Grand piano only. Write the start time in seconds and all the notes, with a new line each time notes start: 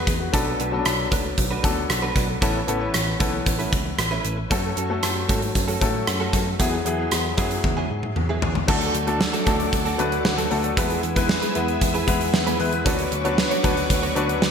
Already playing: F#3 B3 E4 G#4 B4
0.20 F#4
0.33 F#3 B3 D4 A4
0.72 F#3 B3 C#4 A4
0.79 D4
1.63 F#3 B3 D4 A4
2.41 E3 B3 C#4 A4
2.67 E3 B3 C#4 A4
3.19 E3 B3 C#4 A4
4.50 F#3 A3 C#4 A4
4.90 F#3 A3 C#4 A4
5.81 F#3 A3 C#4 A4
6.59 F#3 B3 E4 G#4
6.85 F#3 B3 E4 G#4
7.37 F#3 B3 E4 G#4
8.68 F#3 A3 D4 A4
9.07 F#3 A3 D4 A4
9.46 F#3 A3 D4 A4
9.98 F#3 A3 D4 B4
10.51 F#3 A3 D4 A4
10.77 G#3 B3 E4 B4
11.16 G#3 B3 E4 B4
11.55 G#3 B3 E4 B4
12.07 G#3 B3 E4 B4
12.59 G#3 B3 E4 B4
12.85 F#3 C#4 D4 B4
13.24 F#3 C#4 D4 B4
13.63 F#3 C#4 D4 B4
14.15 F#3 C#4 D4 B4